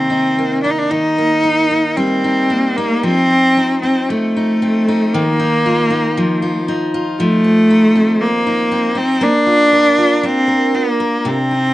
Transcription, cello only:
0.00 0.62 C4 medium
0.63 0.72 D4 medium
0.70 0.80 D#4 medium
0.78 0.92 D4 medium
0.90 1.98 D#4 medium
1.96 2.78 C4 medium
2.76 3.05 A#3 medium
3.03 3.82 C4 medium
3.82 4.10 C4 medium
4.09 5.15 A3 medium
5.14 6.67 A#3 medium
7.20 8.23 A3 medium
8.21 8.99 A#3 medium
8.98 9.25 C4 medium
9.23 10.27 D4 medium
10.25 10.77 C4 medium
10.76 11.30 A#3 medium
11.28 11.74 C4 medium

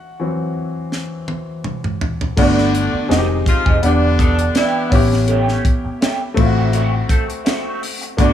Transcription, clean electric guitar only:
2.37 2.71 B3 medium
2.37 2.72 D4 medium
2.37 2.72 F#4 medium
2.93 muted clean electric guitar stroke soft
3.10 3.26 C4 medium
3.10 3.27 D#4 medium
3.10 3.27 G#4 medium
3.46 muted clean electric guitar stroke soft
3.66 3.78 C4 medium
3.66 3.77 D#4 medium
3.66 3.77 G#4 medium
3.84 muted clean electric guitar stroke soft
4.03 muted clean electric guitar stroke soft
4.19 4.36 B3 medium
4.19 4.36 D4 medium
4.19 4.37 A4 medium
4.40 muted clean electric guitar stroke soft
4.55 4.89 B3 medium
4.55 4.89 D4 medium
4.55 4.90 G4 medium
4.93 muted clean electric guitar stroke soft
5.12 muted clean electric guitar stroke soft
5.28 5.62 A3 medium
5.28 5.62 C#4 medium
5.28 5.63 G4 medium
5.85 muted clean electric guitar stroke soft
6.01 6.17 A3 medium
6.01 6.18 C#4 medium
6.01 6.18 G4 medium
6.37 muted clean electric guitar stroke soft
6.56 6.68 A3 soft
6.56 6.68 C4 medium
6.56 6.67 F#4 medium
6.73 6.90 A3 medium
6.73 6.90 C4 medium
6.73 6.90 F#4 medium
6.93 muted clean electric guitar stroke soft
7.09 7.22 A3 medium
7.09 7.23 C4 medium
7.09 7.23 A4 medium
7.28 muted clean electric guitar stroke soft
7.45 7.79 A3 medium
7.45 7.79 C4 medium
7.45 7.80 F#4 medium
7.81 muted clean electric guitar stroke soft
8.01 muted clean electric guitar stroke medium
8.17 8.33 B3 medium
8.17 8.33 D4 medium
8.17 8.33 F#4 medium

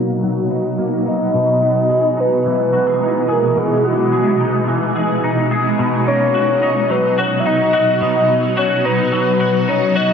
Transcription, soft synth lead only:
0.00 0.24 F#4 medium
1.08 2.22 D#5 loud
2.20 2.47 B4 medium
2.48 3.33 B4 medium
3.31 3.60 A#4 medium
3.59 3.88 G#4 medium
3.86 4.69 F#4 medium
6.08 6.93 C#5 loud
6.91 7.21 B4 medium
7.19 7.41 C#5 medium
7.40 7.48 E5 medium
7.47 8.02 D#5 loud
8.02 8.53 D#5 loud
8.58 8.87 C#5 medium
8.85 9.12 B4 medium
9.13 9.70 B4 medium
9.69 9.98 C#5 loud
9.96 10.13 D#5 loud

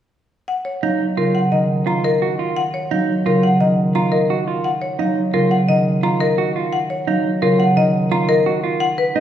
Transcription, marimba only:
0.48 0.71 F#5 medium
0.65 0.88 C#5 soft
0.83 1.05 F5 soft
1.18 1.40 A#4 soft
1.35 1.57 F#5 medium
1.52 1.75 D#5 medium
1.87 2.10 A#5 medium
2.04 2.27 A#4 medium
2.57 2.79 F#5 medium
2.74 2.96 C#5 soft
2.91 3.14 F5 soft
3.26 3.48 A#4 soft
3.43 3.66 F#5 medium
3.61 3.83 D#5 medium
3.95 4.18 A#5 soft
4.12 4.35 A#4 medium
4.64 4.87 F#5 medium
4.82 5.04 C#5 soft
4.99 5.22 F5 soft
5.34 5.56 A#4 soft
5.51 5.74 F#5 soft
5.69 5.91 D#5 medium
6.03 6.26 A#5 medium
6.20 6.43 A#4 medium
6.73 6.95 F#5 medium
6.90 7.12 C#5 soft
7.08 7.30 F5 medium
7.42 7.64 A#4 medium
7.60 7.82 F#5 soft
7.77 7.99 D#5 medium
8.12 8.34 A#5 medium
8.29 8.51 A#4 medium
8.80 9.03 F#5 medium
8.98 9.20 B4 medium
9.16 9.20 D#5 medium

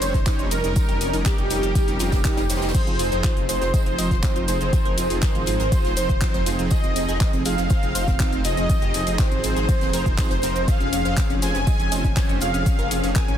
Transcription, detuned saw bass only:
0.02 0.12 F1 loud
0.14 0.24 F1 loud
0.39 0.49 F1 medium
0.51 0.61 F1 loud
0.64 0.74 F1 medium
0.89 0.98 F1 medium
1.01 1.11 F1 loud
1.13 1.23 F1 loud
1.38 1.48 F1 medium
1.50 1.60 F1 loud
1.63 1.73 F1 medium
1.88 1.98 F1 medium
2.00 2.10 F1 loud
2.13 2.22 F1 medium
2.37 2.47 F1 medium
2.50 2.60 F1 loud
2.62 2.72 F1 loud
2.87 2.97 F1 medium
2.99 3.09 F1 loud
3.12 3.22 F1 medium
3.37 3.46 F1 medium
3.49 3.59 F1 loud
3.61 3.71 F1 medium
3.86 3.96 F1 medium
3.98 4.08 F1 loud
4.11 4.21 F1 medium
4.36 4.46 F1 medium
4.48 4.58 F1 loud
4.61 4.70 F1 medium
4.85 4.95 F1 medium
4.98 5.08 F1 loud
5.10 5.20 F1 loud
5.35 5.45 G#1 medium
5.47 5.57 G#1 loud
5.60 5.70 G#1 medium
5.84 5.94 D#1 medium
5.97 6.07 F1 loud
6.09 6.19 F1 medium
6.34 6.44 F1 medium
6.46 6.56 F1 loud
6.59 6.69 F1 medium
6.84 6.93 F1 medium
6.96 7.06 F1 loud
7.08 7.18 F1 medium
7.33 7.43 F1 medium
7.45 7.56 F1 loud
7.58 7.68 F1 medium
7.83 7.93 F1 medium
7.95 8.05 F1 loud
8.08 8.17 F1 loud
8.32 8.42 F1 medium
8.45 8.55 F1 loud
8.57 8.67 F1 medium
8.82 8.92 F1 medium
8.94 9.04 F1 loud
9.07 9.17 F1 medium
9.32 9.41 G#1 medium
9.44 9.54 G#1 loud
9.56 9.66 G#1 medium
9.81 9.91 D#1 medium
9.93 10.03 F1 loud
10.06 10.16 F1 medium
10.31 10.41 F1 medium
10.43 10.53 F1 loud
10.55 10.65 F1 medium
10.80 10.90 F1 medium
10.92 11.03 F1 loud
11.05 11.15 F1 loud
11.30 11.40 F1 medium
11.42 11.52 F1 loud
11.55 11.65 F1 medium
11.79 11.89 F1 medium
11.92 12.02 F1 loud
12.04 12.14 F1 medium
12.29 12.39 F1 medium
12.41 12.51 F1 loud
12.54 12.64 F1 medium
12.79 12.89 F1 medium
12.91 13.01 F1 loud
13.03 13.13 F1 medium
13.28 13.38 G#1 medium

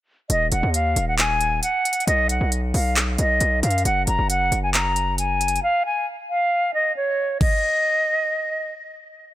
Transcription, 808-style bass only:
0.30 0.51 D#1 loud
0.52 0.63 D#1 loud
0.63 0.95 D#2 loud
0.96 1.60 D#1 loud
2.07 2.39 B1 loud
2.41 2.73 B1 loud
2.74 3.17 B1 loud
3.19 3.40 B1 loud
3.41 3.62 B1 loud
3.63 3.84 F#2 loud
3.85 4.07 F#1 loud
4.07 4.18 F#1 loud
4.19 4.51 F#1 loud
4.52 5.59 F#1 loud

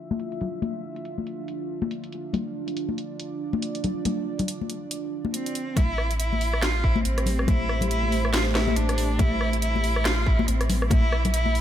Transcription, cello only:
5.34 5.78 C4 medium
5.77 6.19 E4 loud
6.20 6.64 E4 loud
6.63 6.85 F4 loud
6.84 7.05 E4 loud
7.05 7.49 C4 loud
7.48 7.90 E4 loud
7.91 8.31 E4 loud
8.34 8.43 F4 loud
8.55 8.78 E4 loud
8.76 9.21 D4 loud
9.19 9.61 E4 loud
9.62 10.07 E4 loud
10.05 10.28 F4 loud
10.27 10.50 E4 medium
10.48 10.90 C4 medium
10.91 11.31 E4 loud
11.34 11.61 E4 loud

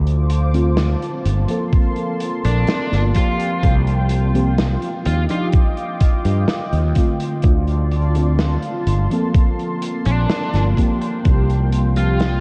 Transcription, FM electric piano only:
0.53 1.22 D3 medium
0.53 1.22 A3 medium
0.53 1.22 C4 medium
0.53 1.23 F4 medium
1.48 3.09 F3 medium
1.48 3.10 A#3 medium
1.48 3.10 C4 medium
1.48 3.11 A4 loud
3.14 4.28 F3 medium
3.14 4.29 A#3 medium
3.14 4.30 C4 medium
3.14 4.30 G4 medium
4.34 4.63 F3 medium
4.34 4.63 A#3 medium
4.34 4.63 C4 medium
4.34 4.63 G4 loud
5.29 5.58 F3 loud
5.29 5.58 D4 medium
5.29 5.58 D#4 medium
5.29 5.59 G4 loud
6.95 8.09 D3 medium
6.95 8.10 A3 medium
6.95 8.10 C4 medium
6.95 8.11 F4 medium
8.15 8.84 D3 medium
8.15 8.84 A3 medium
8.15 8.84 C4 medium
8.15 8.85 F4 medium
9.10 10.71 F3 medium
9.10 10.72 A#3 medium
9.10 10.72 C4 medium
9.10 10.73 A4 loud
10.76 11.91 F3 medium
10.76 11.91 A#3 medium
10.76 11.92 C4 medium
10.76 11.92 G4 medium
11.96 12.25 F3 medium
11.96 12.25 A#3 medium
11.96 12.25 C4 medium
11.96 12.26 G4 medium

